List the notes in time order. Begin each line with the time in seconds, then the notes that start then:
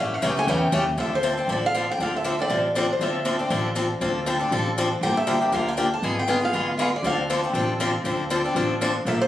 Already playing: A1 C#3 E3 A3
0.00 C#4 G4 E5
0.14 F5
0.22 C#2 C#3 E3 A3 C#4 G4 G5
0.36 A3 C#4 G4 G#5
0.47 E2 C#3 E3 A3 C#4 G4 G5
0.72 D#2 C#3 E3 A3 C#4 G4
0.97 D2 D3 F3 C4 D4 A4 E5
1.15 C5
1.23 D3 F3 C4 D4 A4
1.37 C4 D4 A4
1.48 A1 D3 F3 C4 D4 A4
1.52 D5
1.66 F5
1.74 D3 F3 C4 D4 A4
1.91 G5
1.98 D2 D3 F3 C4 D4 A4
2.03 F5
2.16 E5
2.24 D3 F3 C4 D4 A4
2.39 C4 D4 A4 D5
2.49 A1 D3 F3 C4 D4 A4
2.75 D3 F3 C4 D4 A4 D5
2.93 C5
2.99 D2 D3 F3 C4 D4 A4 E5
3.25 D3 F3 C4 D4 A4
3.39 C4 D4 A4
3.50 A1 D3 F3 C4 D4 A4
3.75 D3 F3 C4 D4 A4
4.01 D2 D3 F3 C4 D4 A4
4.26 D3 F3 C4 D4 A4
4.39 C4 D4 A4
4.51 A1 D3 F3 C4 D4 A4
4.78 D3 F3 C4 D4 A4
5.01 G1 D3 F3 A#3 D4 G4 G5
5.17 E5
5.27 D3 F3 A#3 D4 G4
5.41 A#3 D4 G4
5.52 D2 D3 F3 A#3 D4 G4 F5
5.68 G5
5.77 D3 F3 A#3 D4 G4
5.94 A5
6.02 G#1 D3 G#3 B3 F4 G#4 G#5
6.19 G5
6.28 D3 G#3 B3 F4 G#4 G5
6.41 B3 F4 G#4 F5
6.53 D2 D3 G#3 B3 F4 G#4
6.77 D3 G#3 B3 F4 G#4 E5 F5
6.96 D5
7.03 D2 D3 F3 C4 D4 A4 F5
7.30 D3 F3 C4 D4 A4
7.44 C4 D4 A4
7.53 A1 D3 F3 C4 D4 A4
7.80 D3 F3 C4 D4 A4
8.04 D2 D3 F3 C4 D4 A4
8.30 D3 F3 C4 D4 A4
8.44 C4 D4 A4
8.55 A1 D3 F3 C4 D4 A4
8.81 D3 F3 C4 D4 A4
9.05 A#1 D3 F3 A#3 D4 A4 E5
9.21 C5